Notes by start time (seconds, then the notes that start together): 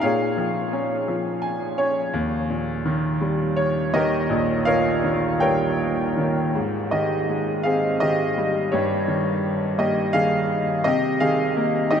0.01 A#2 G#4 C#5 F5
0.38 F3
0.73 C#4
1.08 F3
1.42 G#5
1.78 C#4 C#5
2.13 D#2
2.50 A#2
2.86 D#3
3.21 G3
3.56 C#5
3.94 D#3 G4 A#4 D#5
4.30 A#1
4.65 A#2 A#4 C#5 F5
5.04 D#3
5.40 G3 A#4 C#5 G5
6.17 D#3
6.55 G#2
6.91 D#3 G4 D#5
7.29 G#3
7.63 C4 G#4 F5
8.00 D#3 G4 D#5
8.38 G3
8.72 G2 G4 C#5
9.08 D#3
9.78 A#3 G4 D#5
10.13 D#3 G#4 F5
10.84 C3 G4 D#5
11.20 D#3 G#4 F5
11.57 A#3
11.91 D#4 G4 D#5